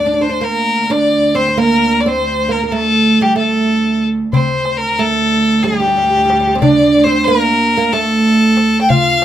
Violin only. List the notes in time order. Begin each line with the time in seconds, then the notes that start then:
Already playing: D5
0.22 C5
0.43 A#4
0.91 D5
1.35 C5
1.58 A#4
2.01 D5
2.08 C5
2.51 A#4
2.66 A#4
2.72 A4
3.22 G4
3.37 A4
4.33 C5
4.77 A#4
4.99 A4
5.63 G4
6.60 D5
7.04 C5
7.25 A#4
7.92 A4
8.81 G5
8.89 F5